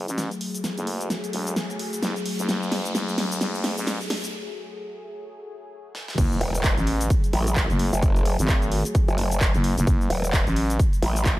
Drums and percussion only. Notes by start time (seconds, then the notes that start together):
0.08 closed hi-hat, shaker
0.18 snare, closed hi-hat, shaker
0.31 closed hi-hat, shaker
0.41 open hi-hat
0.55 closed hi-hat, shaker
0.64 snare, closed hi-hat, shaker
0.78 closed hi-hat, shaker
0.87 open hi-hat
1.01 closed hi-hat, shaker
1.10 snare, closed hi-hat, shaker
1.24 closed hi-hat, shaker
1.33 open hi-hat
1.47 closed hi-hat, shaker
1.56 snare, closed hi-hat, shaker
1.70 closed hi-hat, shaker
1.79 open hi-hat
1.93 closed hi-hat, shaker
2.03 snare, closed hi-hat, shaker
2.16 closed hi-hat, shaker
2.26 open hi-hat
2.39 closed hi-hat, shaker
2.49 snare, closed hi-hat, shaker
2.63 shaker
2.72 snare, open hi-hat
2.85 closed hi-hat, shaker
2.95 snare, closed hi-hat, shaker
3.08 closed hi-hat, shaker
3.18 snare, open hi-hat
3.31 closed hi-hat, shaker
3.41 snare, closed hi-hat, shaker
3.55 closed hi-hat, shaker
3.64 snare, open hi-hat
3.78 closed hi-hat, shaker
3.87 snare, closed hi-hat, shaker
4.01 closed hi-hat, shaker
4.10 snare, open hi-hat
4.24 closed hi-hat, shaker
5.95 snare
6.08 snare
6.18 kick, closed hi-hat, crash, shaker
6.32 shaker
6.41 open hi-hat
6.55 closed hi-hat, shaker
6.64 kick, clap, closed hi-hat, shaker
6.78 closed hi-hat, shaker
6.87 open hi-hat
7.01 closed hi-hat, shaker
7.10 kick, closed hi-hat, shaker
7.24 closed hi-hat, shaker
7.33 open hi-hat
7.47 closed hi-hat, shaker
7.56 kick, clap, closed hi-hat, shaker
7.70 closed hi-hat, shaker
7.79 open hi-hat
7.93 closed hi-hat, shaker
8.02 kick, closed hi-hat, shaker
8.16 closed hi-hat, shaker
8.26 open hi-hat
8.39 closed hi-hat, shaker
8.48 kick, clap, closed hi-hat, shaker
8.62 closed hi-hat, shaker
8.72 open hi-hat
8.85 closed hi-hat, shaker
8.95 kick, closed hi-hat, shaker
9.08 closed hi-hat, shaker
9.18 open hi-hat
9.31 closed hi-hat, shaker
9.41 kick, clap, closed hi-hat, shaker
9.54 closed hi-hat, shaker
9.64 open hi-hat
9.78 closed hi-hat, shaker
9.87 kick, closed hi-hat, shaker
10.01 shaker
10.10 open hi-hat
10.24 closed hi-hat, shaker
10.33 kick, clap, closed hi-hat, shaker
10.47 closed hi-hat, shaker
10.56 open hi-hat
10.70 closed hi-hat, shaker
10.79 kick, closed hi-hat, shaker
10.93 closed hi-hat, shaker
11.03 open hi-hat
11.16 closed hi-hat, shaker
11.25 kick, clap, closed hi-hat, shaker